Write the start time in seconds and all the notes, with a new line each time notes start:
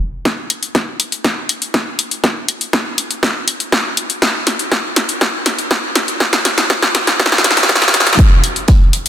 0.25 kick, snare, closed hi-hat
0.50 open hi-hat
0.63 closed hi-hat
0.75 kick, snare, closed hi-hat
1.00 open hi-hat
1.12 closed hi-hat
1.24 kick, snare, closed hi-hat
1.49 open hi-hat
1.62 closed hi-hat
1.74 kick, snare, closed hi-hat
1.99 open hi-hat
2.11 closed hi-hat
2.24 kick, snare, closed hi-hat
2.48 open hi-hat
2.61 closed hi-hat
2.73 kick, snare, closed hi-hat
2.98 open hi-hat
3.11 closed hi-hat
3.23 kick, snare, closed hi-hat
3.48 open hi-hat
3.60 closed hi-hat
3.72 kick, snare, closed hi-hat
3.97 open hi-hat
4.10 closed hi-hat
4.22 kick, snare, closed hi-hat
4.47 snare, open hi-hat
4.59 closed hi-hat
4.72 kick, snare, closed hi-hat
4.96 snare, open hi-hat
5.09 closed hi-hat
5.21 kick, snare, closed hi-hat
5.46 snare, open hi-hat
5.58 closed hi-hat
5.71 kick, snare, closed hi-hat
5.95 snare, open hi-hat
6.08 closed hi-hat
6.20 kick, snare, closed hi-hat
6.33 snare
6.45 snare, open hi-hat
6.58 snare, closed hi-hat
6.70 kick, snare, closed hi-hat
6.82 snare
6.95 snare, open hi-hat
7.07 snare, closed hi-hat
7.20 kick, snare, closed hi-hat
7.26 snare
7.32 snare
7.38 snare
7.44 snare, open hi-hat
7.51 snare
7.57 snare, closed hi-hat
7.63 snare
7.69 kick, snare, closed hi-hat
7.75 snare
7.82 snare
7.88 snare
7.94 snare, open hi-hat
8.00 snare
8.07 snare, closed hi-hat
8.13 snare
8.19 kick, closed hi-hat
8.44 closed hi-hat, open hi-hat
8.56 closed hi-hat
8.68 kick, snare, closed hi-hat
8.93 closed hi-hat, open hi-hat